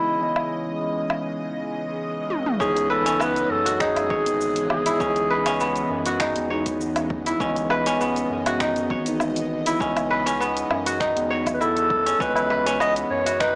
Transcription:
Already playing: C#2 C#3 E3 G#3 B3 C#4 E4 C#5 D#5
0.18 C#2 E3 B3
0.23 D#5
0.36 low woodblock
1.10 low woodblock
2.30 high tom
2.46 mid tom
2.59 C#2 E3 B3 C#4 D#4 G#4 C#5, kick, shaker
2.77 closed hi-hat, shaker
2.90 A4 B4
3.06 C#4, closed hi-hat, shaker
3.19 B3 B4, low woodblock, shaker
3.36 closed hi-hat, shaker
3.50 F#2 A4
3.59 B3
3.66 F#4, closed hi-hat, shaker
3.74 A4
3.80 D#4 G#4, finger snap, kick, shaker
3.96 closed hi-hat, low woodblock, shaker
4.10 G#1 C#5, kick
4.25 E3 B3 D#4, closed hi-hat, shaker
4.41 shaker
4.56 closed hi-hat, shaker
4.70 G#4, low woodblock
4.86 E4, closed hi-hat, shaker
4.99 C#2 E3 B3 C#4, kick, shaker
5.03 D#5
5.16 closed hi-hat, shaker
5.30 B4
5.46 C#4, closed hi-hat, low woodblock, shaker
5.60 B3, shaker
5.76 closed hi-hat, shaker
5.90 F#2
6.06 F#4, closed hi-hat, shaker
6.20 D#4, finger snap, kick, low woodblock, shaker
6.36 E2, closed hi-hat, shaker
6.48 E3 B3 D#4 C#5
6.66 kick, closed hi-hat, shaker
6.81 shaker
6.96 closed hi-hat, low woodblock, shaker
7.10 kick
7.26 E4, closed hi-hat, shaker
7.39 C#2 E3 B3 C#4, kick, shaker
7.43 D#5
7.56 closed hi-hat, shaker
7.70 B4, low woodblock
7.86 C#4, closed hi-hat, shaker
8.01 B3, shaker
8.16 closed hi-hat, shaker
8.30 F#2
8.46 F#4, closed hi-hat, low woodblock, shaker
8.60 D#4, finger snap, kick, shaker
8.76 closed hi-hat, shaker
8.90 G#1 C#5, kick
9.04 E3 B3, closed hi-hat, shaker
9.09 D#4
9.20 low woodblock, shaker
9.36 closed hi-hat, shaker
9.66 E4, closed hi-hat, shaker
9.79 C#2 E3 B3 C#4 D#5, kick, shaker
9.97 closed hi-hat, low woodblock, shaker
10.11 B4
10.26 C#4, closed hi-hat, shaker
10.40 B3, shaker
10.57 closed hi-hat, shaker
10.70 F#2, low woodblock
10.86 F#4, closed hi-hat, shaker
11.00 D#4, finger snap, kick, shaker
11.16 E2, closed hi-hat, shaker
11.30 C#5
11.46 kick, closed hi-hat, low woodblock, shaker
11.54 B4
11.61 E4 A4, shaker
11.77 closed hi-hat, shaker
11.90 kick
12.06 C#4, closed hi-hat, shaker
12.18 C#2 E3 B3 C#4 B4, kick, shaker
12.23 D#5
12.36 closed hi-hat, tabla na, shaker
12.50 B4, tabla tin
12.66 C#4, closed hi-hat, shaker
12.80 B3 D#5, low woodblock, shaker
12.96 closed hi-hat, shaker
13.11 F#2 C#5
13.26 F#4, closed hi-hat, tabla tin, shaker
13.40 D#4 B4, finger snap, kick, tabla tin, shaker

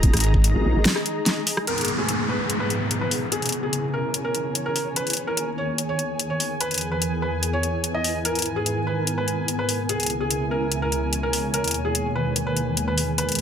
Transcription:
Already playing: D#1 G#3 D#4 G#4 D#5 A#5
0.03 kick, closed hi-hat
0.13 G#1, cross-stick, closed hi-hat
0.17 closed hi-hat
0.20 closed hi-hat
0.34 kick
0.44 closed hi-hat
0.55 G#1
0.65 A#1
0.75 G#1
0.85 snare, closed hi-hat
0.96 cross-stick
1.06 closed hi-hat
1.26 snare, closed hi-hat
1.47 open hi-hat
1.57 cross-stick
1.67 G#2 G#3 B3 A#4 B4, closed hi-hat, downlifter
1.78 A#5, closed hi-hat
1.81 closed hi-hat
1.85 closed hi-hat
1.88 closed hi-hat
1.99 G#4
2.09 closed hi-hat
2.29 B4 G#5
2.50 closed hi-hat
2.60 B4
2.70 closed hi-hat
2.91 closed hi-hat
3.01 B4
3.11 open hi-hat
3.32 C#3 C#4 E4 G#4, closed hi-hat
3.42 closed hi-hat
3.46 C#5, closed hi-hat
3.49 closed hi-hat
3.52 closed hi-hat
3.63 G#4
3.73 closed hi-hat
3.94 A#4
4.14 closed hi-hat
4.25 A#4
4.35 closed hi-hat
4.55 closed hi-hat
4.66 A#4
4.76 open hi-hat
4.96 D#3 A#3 B3 B4, closed hi-hat
5.07 closed hi-hat
5.10 closed hi-hat
5.13 closed hi-hat
5.17 closed hi-hat
5.27 A#4
5.37 closed hi-hat
5.58 C#5
5.78 closed hi-hat
5.89 C#5
5.99 closed hi-hat
6.19 closed hi-hat
6.30 C#5
6.40 open hi-hat
6.61 E2 E3 E4 G#4 B4, closed hi-hat
6.71 closed hi-hat
6.74 closed hi-hat
6.78 closed hi-hat
6.81 closed hi-hat
6.92 B4
7.02 B4, closed hi-hat
7.22 B4
7.43 closed hi-hat
7.53 C#5
7.63 closed hi-hat
7.84 closed hi-hat
7.94 D#5
8.04 open hi-hat
8.25 G#2 D#3 B3 A#4, closed hi-hat
8.35 A#4, closed hi-hat
8.39 closed hi-hat
8.42 closed hi-hat
8.56 G#4
8.66 closed hi-hat
8.87 B4
9.07 closed hi-hat
9.18 B4
9.28 closed hi-hat
9.48 closed hi-hat
9.59 B4
9.69 open hi-hat
9.89 C#2 C#3 G#3 E4 G#4, closed hi-hat
10.00 closed hi-hat
10.03 closed hi-hat
10.06 closed hi-hat
10.10 closed hi-hat
10.20 G#4
10.28 C#5, closed hi-hat
10.51 A#4
10.72 closed hi-hat
10.82 A#4
10.92 closed hi-hat
11.13 closed hi-hat
11.23 A#4
11.33 open hi-hat
11.54 D#2 B2 D#3 A#3 A#4, closed hi-hat
11.64 closed hi-hat
11.68 closed hi-hat
11.71 closed hi-hat
11.74 closed hi-hat
11.85 G#4
11.95 closed hi-hat
12.08 A#4
12.15 B4
12.36 closed hi-hat
12.47 B4
12.57 closed hi-hat
12.77 closed hi-hat
12.88 B4
12.98 open hi-hat
13.18 E2 E3 B3 E4 B4, closed hi-hat
13.29 closed hi-hat
13.32 closed hi-hat
13.35 closed hi-hat

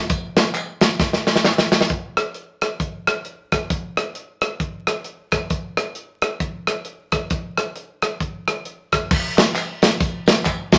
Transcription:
0.10 kick, closed hi-hat, tambourine
0.37 snare, clap, closed hi-hat, tambourine
0.54 clap, closed hi-hat, tambourine
0.81 snare, closed hi-hat, tambourine
1.00 kick, snare, tambourine
1.13 snare
1.27 snare, tambourine
1.36 snare
1.44 snare, clap, tambourine
1.58 snare
1.72 snare, tambourine
1.81 snare
1.90 kick, closed hi-hat
2.17 cross-stick, closed hi-hat
2.34 closed hi-hat
2.61 cross-stick, closed hi-hat
2.80 kick, closed hi-hat
3.07 cross-stick, closed hi-hat
3.25 closed hi-hat
3.52 kick, cross-stick, closed hi-hat
3.70 kick, closed hi-hat
3.97 cross-stick, closed hi-hat
4.15 closed hi-hat
4.41 cross-stick, closed hi-hat
4.60 kick, closed hi-hat
4.87 cross-stick, closed hi-hat
5.04 closed hi-hat
5.32 kick, cross-stick, closed hi-hat
5.50 kick, closed hi-hat
5.77 cross-stick, closed hi-hat
5.95 closed hi-hat
6.22 cross-stick, closed hi-hat
6.40 kick, closed hi-hat
6.67 cross-stick, closed hi-hat
6.85 closed hi-hat
7.12 kick, cross-stick, closed hi-hat
7.30 kick, closed hi-hat
7.57 cross-stick, closed hi-hat
7.76 closed hi-hat
8.02 cross-stick, closed hi-hat
8.20 kick, closed hi-hat
8.48 cross-stick, closed hi-hat
8.65 closed hi-hat
8.92 kick, cross-stick, closed hi-hat
9.11 kick, crash, tambourine
9.38 snare, clap, closed hi-hat, tambourine
9.55 clap, closed hi-hat, tambourine
9.82 snare, closed hi-hat, tambourine
10.01 kick, closed hi-hat, tambourine
10.26 snare, closed hi-hat, tambourine
10.45 kick, clap, closed hi-hat, tambourine
10.72 kick, snare, closed hi-hat, tambourine

